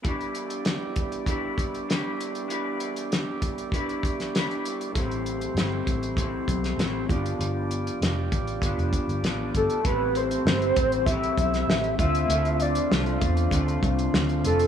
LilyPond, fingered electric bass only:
\new Staff \with { instrumentName = "Fingered electric bass" } { \clef bass \time 4/4 \key a \minor \tempo 4 = 98 r1 | r1 | a,,4 g,,8 a,,4 b,,8 a,,8 g,,8 | g,,4 f,,8 a,,8 g,,16 f,,16 r16 g,,16 a,,8 g,,16 r16 |
a,,4 g,,8 a,,4 b,,8 a,,8 d,8 | d,4 c,8 e,8 d,8 c,8 d,8 f,,8 | }